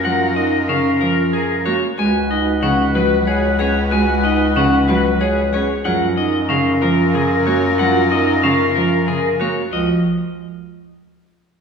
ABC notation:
X:1
M:6/4
L:1/8
Q:1/4=186
K:Dbmix
V:1 name="Clean electric guitar"
g z e z f z B z A z d z | a z e z g z c z A z d z | a z e z g z c z A z d z | g z e z f z B z A z d z |
g z e z f z B z A z d z | e z8 z3 |]
V:2 name="Oboe"
B8- B3 z | c12- | c8- c3 z | B12- |
B8- B3 z | z12 |]
V:3 name="String section"
[FB]8- [FB]3 z | [Gc]12- | [Gc]8- [Gc]3 z | [FB]12- |
[FB]8- [FB]3 z | z12 |]
V:4 name="Vibraphone"
F z E z D z F z B z G z | G z E z D z G z d z A z | G z E z D z G z d z A z | F z E z D z F z B z G z |
F z E z D z F z B z G z | F z8 z3 |]
V:5 name="Cello" clef=bass
G, z3 D, z F, z3 B, z | A, z3 D, z G, z3 D z | A, z3 D, z G, z3 D z | G, z3 D, z F, z D, z B, z |
G, z3 D, z F, z D, z B, z | F, z8 z3 |]
V:6 name="Bass clarinet" clef=bass
G,,12 | D,,12- | D,,12 | G,,12- |
G,,12 | D,, z8 z3 |]